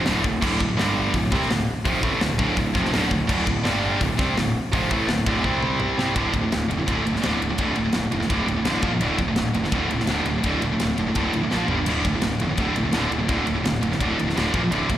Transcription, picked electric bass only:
0.06 D1
0.24 D1
0.43 D1
0.61 D1
0.78 G1
1.14 D1
1.32 C2
1.50 D1
1.85 F1
2.04 A1
2.21 D1
2.39 D1
2.57 D1
2.76 F1
2.93 D1
3.11 D1
3.30 D1
3.47 D1
3.64 G1
4.01 D1
4.19 C2
4.37 D1
4.73 F1
4.92 A1
5.08 D1
5.26 D1
5.45 C2
5.98 C2
6.16 D1
6.34 D1
6.52 D1
6.70 F1
6.89 D1
7.05 D1
7.24 D1
7.41 D1
7.59 D1
7.77 D1
7.95 D1
8.13 F1
8.30 D1
8.47 D1
8.65 A1
8.83 A#1
9.00 D1
9.19 D1
9.36 D1
9.54 F1
9.72 D1
9.89 D1
10.08 D1
10.26 D1
10.44 D1
10.62 D1
10.80 D1
10.98 F1
11.16 D1
11.34 A1
11.52 A#1
11.69 G1
11.87 D1
12.05 D1
12.22 D1
12.40 F1
12.58 D1
12.75 D1
12.93 D1
13.11 D1
13.29 D1
13.48 D1
13.64 D1
13.83 F1
14.01 D1
14.19 D1
14.36 D1
14.54 A#1
14.70 D1
14.90 D1

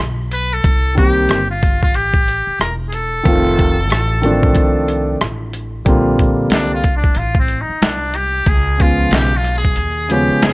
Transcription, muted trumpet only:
0.34 B4
0.53 A4
0.98 G4
1.51 F4
1.83 F4
1.95 G4
2.61 A#4
2.89 G#4
2.95 A4
6.53 D4
6.75 F4
6.97 D4
7.18 F4
7.39 C4
7.61 D#4
7.83 D4
8.16 G4
8.49 G#4
8.82 F4
9.15 G4
9.36 F4
9.58 G#4
10.12 G4
10.44 G#4

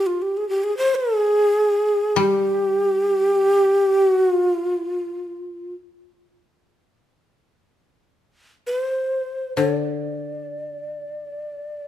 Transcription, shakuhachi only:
0.06 F4
0.22 G4
0.37 G#4
0.49 G4
0.64 G#4
0.77 C5
0.95 G#4
2.18 G4
4.00 F#4
4.45 F4
8.67 B4
8.79 C5
9.56 C#5
9.75 D5

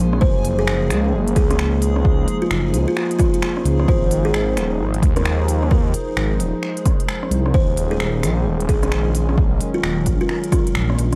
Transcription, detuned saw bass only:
0.00 A#1
0.22 F#1
0.68 F#1
0.90 C#2
1.13 F#1
1.36 C#2
2.51 F#1
2.73 C#2
3.65 C#2
3.88 G#1
4.34 G#1
4.57 D#1
4.79 G#1
5.03 D#2
6.17 G#1
6.40 D#1
7.31 C2
7.54 D#1
8.00 D#1
8.23 A#1
8.46 D#1
8.69 A#1
9.83 D#1
10.06 A#1
10.75 A#1
10.98 A#1

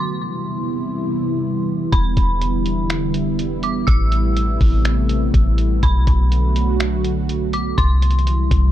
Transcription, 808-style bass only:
1.93 E1
2.17 E1
3.88 A1
4.61 A1
5.34 A1
5.83 B1
6.07 B1
7.78 C2
8.51 C2

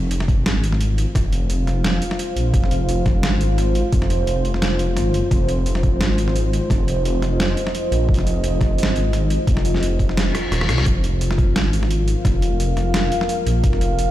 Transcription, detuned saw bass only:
Already playing: F1
0.46 G#1
1.15 F1
1.84 F1
2.36 A#1
2.54 F1
3.23 G#1
3.92 F1
4.62 F1
4.96 G#1
5.14 F#1
5.31 F1
6.01 G#1
6.70 F1
7.39 F1
7.91 A#1
8.09 F1
8.78 G#1
9.47 F1
10.16 F1
10.51 D#1
10.69 C2
10.86 F1
11.55 G#1
12.25 F1
12.94 F1
13.46 A#1

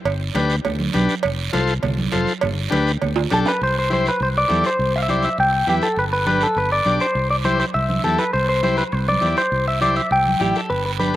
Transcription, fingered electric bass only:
0.05 G1
0.35 D2
0.65 D2
0.95 B1
1.25 F1
1.55 C2
1.84 C2
2.13 F1
2.43 G1
2.72 D2
3.02 D2
3.32 B1
3.62 C2
4.20 C2
4.50 E2
4.79 C2
5.38 C2
5.67 E2
5.97 G1
6.56 G1
6.86 B1
7.15 C2
7.75 C2
8.05 E2
8.34 C2
8.93 C2
9.22 E2
9.52 C2
10.11 C2
10.41 A1
10.70 G1

